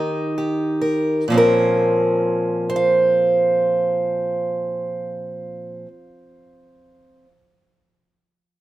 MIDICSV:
0, 0, Header, 1, 2, 480
1, 0, Start_track
1, 0, Tempo, 906344
1, 684, Tempo, 940439
1, 685, Time_signature, 3, 2, 24, 8
1, 2604, Tempo, 953895
1, 4390, End_track
2, 0, Start_track
2, 0, Title_t, "Steel-string acoustic guitar"
2, 0, Program_c, 0, 25
2, 0, Note_on_c, 0, 51, 68
2, 0, Note_on_c, 0, 63, 53
2, 0, Note_on_c, 0, 67, 42
2, 0, Note_on_c, 0, 70, 84
2, 194, Note_off_c, 0, 67, 0
2, 200, Note_on_c, 0, 67, 39
2, 425, Note_off_c, 0, 70, 0
2, 432, Note_on_c, 0, 70, 48
2, 652, Note_off_c, 0, 70, 0
2, 654, Note_off_c, 0, 63, 0
2, 656, Note_off_c, 0, 67, 0
2, 677, Note_on_c, 0, 46, 60
2, 683, Note_off_c, 0, 51, 0
2, 689, Note_on_c, 0, 53, 54
2, 698, Note_on_c, 0, 60, 53
2, 708, Note_on_c, 0, 61, 47
2, 727, Note_on_c, 0, 70, 72
2, 1366, Note_off_c, 0, 70, 0
2, 1399, Note_off_c, 0, 61, 0
2, 1401, Note_on_c, 0, 72, 67
2, 1433, Note_on_c, 0, 77, 62
2, 2999, Note_off_c, 0, 46, 0
2, 3010, Note_off_c, 0, 53, 0
2, 3019, Note_off_c, 0, 60, 0
2, 3712, Note_off_c, 0, 72, 0
2, 3744, Note_off_c, 0, 77, 0
2, 4390, End_track
0, 0, End_of_file